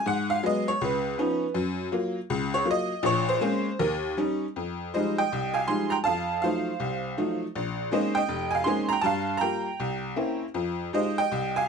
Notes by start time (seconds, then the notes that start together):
0.06 G#2 F#5
0.30 F5
0.43 F#3 G#3 B3 D#5
0.68 C#5
0.81 C#2 B4
1.18 F3 B3 C#4 D#4
1.54 F#2
1.92 F#3 A#3 F4
2.30 C#2
2.54 C#5
2.65 F#3 A#3 F4
2.71 D#5
3.03 A#1 A#2 C#5
3.29 C5
3.41 G#3 A#3 C4 C#4
3.79 D#2 A#4
4.17 G3 C#4 D#4
4.56 F2
4.94 F3 G3 G#3 D#4 C5 D#5
5.18 D#5 G5
5.32 C2
5.54 F5 G#5
5.67 F3 G3 G#3 D#4 G#5 C6
5.90 G5 A#5
6.04 F2 F5 A5
6.42 F3 F#3 A3 D#4 C5 F5
6.80 C2
7.18 F3 F#3 A3 D#4
7.55 A#1
7.92 G#3 A#3 C4 C#4 D#4 C5 D#5
8.15 D#5 G5
8.28 F1
8.51 G#5
8.55 F5
8.64 G#3 A#3 C4 C#4 D#4 G#5 C6
8.89 A#5
8.93 G5
9.01 G2 A5
9.06 F5
9.37 G3 G5 A#5
9.42 A#3 F4
9.80 C2
10.16 A#3 C4 C#4 E4
10.54 F2 F3
10.93 G#3 D#4 F4 G4 C5 D#5
11.18 D#5 G5
11.32 C2
11.56 F5 G#5